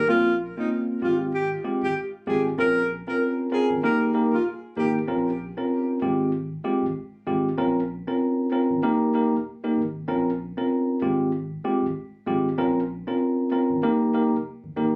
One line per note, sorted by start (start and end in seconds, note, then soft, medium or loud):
0.08 0.52 A#1 loud
0.08 0.29 A#3 medium
0.08 0.29 C4 medium
0.08 0.29 C#4 medium
0.08 0.29 F4 loud
0.08 0.36 F4 loud
0.57 0.99 A#3 medium
0.57 0.99 C4 medium
0.57 0.99 C#4 medium
0.57 0.70 D#4 medium
0.57 0.99 F4 medium
1.02 1.57 G#1 loud
1.02 1.31 G#3 medium
1.02 1.31 C4 medium
1.02 1.31 F4 medium
1.02 1.18 F4 medium
1.02 1.31 G4 medium
1.35 1.49 G4 medium
1.64 1.85 G#3 medium
1.64 1.85 C4 medium
1.64 1.85 F4 medium
1.64 1.85 G4 medium
1.83 1.94 G#1 medium
1.83 1.95 G4 medium
2.27 2.54 G#1 medium
2.27 2.48 G#3 medium
2.27 2.48 C4 medium
2.27 2.48 F4 medium
2.27 2.48 G4 medium
2.27 2.43 G#4 medium
2.58 3.02 A#1 loud
2.58 2.79 C4 medium
2.58 2.79 C#4 medium
2.58 2.79 F4 medium
2.58 2.79 A#4 loud
2.58 2.86 A#4 loud
3.07 3.49 C4 medium
3.07 3.49 C#4 medium
3.07 3.49 F4 medium
3.07 3.49 A#4 medium
3.07 3.19 A#4 medium
3.52 3.81 C4 medium
3.52 3.81 C#4 medium
3.52 3.81 F4 medium
3.52 3.68 G#4 medium
3.52 3.81 A#4 medium
3.70 3.82 G#1 medium
3.83 4.26 D#1 loud
3.83 4.12 A#3 medium
3.83 4.12 D#4 medium
3.83 4.13 G4 medium
3.83 4.13 A#4 loud
3.83 3.99 A#4 medium
4.14 4.35 A#3 medium
4.14 4.35 D#4 medium
4.14 4.35 G4 medium
4.14 4.35 A#4 medium
4.33 4.44 D#1 loud
4.33 4.45 F4 medium
4.77 5.04 G#1 medium
4.77 4.98 A#3 medium
4.77 4.98 D#4 medium
4.77 4.98 G4 medium
4.77 4.93 G4 medium
4.77 4.98 A#4 medium
5.08 5.51 A#1 loud
5.08 5.29 C4 medium
5.08 5.29 C#4 medium
5.08 5.29 F4 medium
5.08 5.29 A#4 loud
5.57 5.99 C4 medium
5.57 5.99 C#4 medium
5.57 5.99 F4 medium
5.57 5.99 A#4 medium
6.02 6.57 G#1 loud
6.02 6.31 G#3 medium
6.02 6.31 C4 medium
6.02 6.31 F4 medium
6.02 6.31 G4 medium
6.64 6.85 G#3 medium
6.64 6.85 C4 medium
6.64 6.85 F4 medium
6.64 6.85 G4 medium
6.83 6.94 G#1 medium
7.27 7.54 G#1 loud
7.27 7.48 G#3 medium
7.27 7.48 C4 medium
7.27 7.48 F4 medium
7.27 7.48 G4 medium
7.58 8.02 A#1 loud
7.58 7.79 C4 medium
7.58 7.79 C#4 medium
7.58 7.79 F4 medium
7.58 7.79 A#4 loud
8.07 8.49 C4 medium
8.07 8.49 C#4 medium
8.07 8.49 F4 medium
8.07 8.49 A#4 medium
8.52 8.81 C4 medium
8.52 8.81 C#4 medium
8.52 8.81 F4 medium
8.52 8.81 A#4 medium
8.70 8.82 G#1 medium
8.83 9.27 D#1 loud
8.83 9.12 A#3 medium
8.83 9.12 D#4 medium
8.83 9.12 G4 medium
8.83 9.12 A#4 loud
9.14 9.35 A#3 medium
9.14 9.35 D#4 medium
9.14 9.35 G4 medium
9.14 9.36 A#4 medium
9.33 9.44 D#1 loud
9.64 9.81 A#3 medium
9.64 9.81 D#4 medium
9.64 9.81 G4 medium
9.64 9.81 A#4 medium
9.77 10.04 G#1 medium
10.08 10.52 A#1 loud
10.08 10.29 C4 loud
10.08 10.29 C#4 medium
10.08 10.29 F4 medium
10.08 10.29 A#4 loud
10.57 10.99 C4 medium
10.57 10.99 C#4 medium
10.57 10.99 F4 medium
10.57 10.99 A#4 medium
11.02 11.57 G#1 loud
11.02 11.31 G#3 medium
11.02 11.31 C4 medium
11.02 11.31 F4 medium
11.02 11.31 G4 medium
11.64 11.85 G#3 medium
11.64 11.85 C4 medium
11.64 11.85 F4 medium
11.64 11.85 G4 medium
11.83 11.94 G#1 medium
12.27 12.54 G#1 medium
12.27 12.48 G#3 medium
12.27 12.48 C4 medium
12.27 12.48 F4 medium
12.27 12.48 G4 medium
12.58 13.02 A#1 loud
12.58 12.79 C4 loud
12.58 12.79 C#4 medium
12.58 12.79 F4 medium
12.58 12.79 A#4 loud
13.07 13.49 C4 medium
13.07 13.49 C#4 medium
13.07 13.49 F4 medium
13.07 13.49 A#4 medium
13.52 13.81 C4 medium
13.52 13.81 C#4 medium
13.52 13.81 F4 medium
13.52 13.81 A#4 medium
13.70 13.82 G#1 medium
13.83 14.27 D#1 loud
13.83 14.12 A#3 loud
13.83 14.12 D#4 medium
13.83 14.12 G4 medium
13.83 14.13 A#4 loud
14.14 14.35 A#3 medium
14.14 14.35 D#4 medium
14.14 14.35 G4 medium
14.14 14.35 A#4 medium
14.33 14.44 F1 medium
14.64 14.75 G1 medium
14.77 14.93 G#1 medium
14.77 14.96 A#3 medium
14.77 14.96 D#4 medium
14.77 14.96 G4 medium
14.77 14.96 A#4 medium